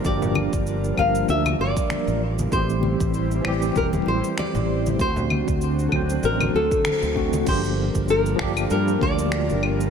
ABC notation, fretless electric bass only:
X:1
M:4/4
L:1/16
Q:"Swing 16ths" 1/4=97
K:Gdor
V:1 name="Fretless electric bass" clef=bass
G,,,3 G,,,3 G,,,2 D,,2 G,,, z2 A,,,3 | A,,,3 A,,,3 A,,,2 E,,,2 A,,, z2 A,,,3 | D,,3 D,,3 D,,2 A,,,2 D,, z2 D,,3 | G,,,3 G,,,3 G,,,2 G,,2 D,,3 G,,,3 |]